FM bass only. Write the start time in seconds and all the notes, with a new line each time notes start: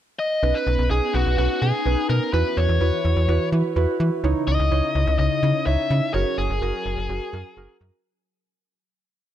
0.43 B1
0.67 B1
0.79 B1
0.90 B1
1.14 B1
1.26 B1
1.38 B1
1.62 B2
1.86 B1
2.10 B2
2.33 E2
2.57 E2
2.69 E2
2.81 E2
3.05 E2
3.17 E2
3.28 E2
3.52 E3
3.76 E2
4.00 E3
4.24 C#2
4.48 C#2
4.59 C#2
4.71 C#2
4.95 C#2
5.07 C#2
5.19 C#2
5.43 C#3
5.67 C#2
5.90 C#3
6.14 F#1
6.38 F#1
6.50 F#1
6.62 F#1
6.86 F#1
6.97 F#1
7.09 F#1
7.33 F#2
7.57 F#1
7.81 F#2